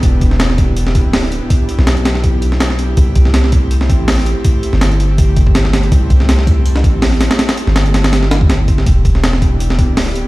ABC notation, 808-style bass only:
X:1
M:4/4
L:1/16
Q:"Swing 16ths" 1/4=163
K:Clyd
V:1 name="808-style bass" clef=bass
E,,,8- E,,,2 D,,,4- D,,, z | z3 B,,,12- B,,, | C,,8- C,,2 A,,,4- A,,, z | z3 G,,,12- G,,, |
C,,8- C,,2 A,,,4- A,,, z | z3 G,,,8- G,,, G,,,4 | E,,,8- E,,,2 D,,,4- D,,, z |]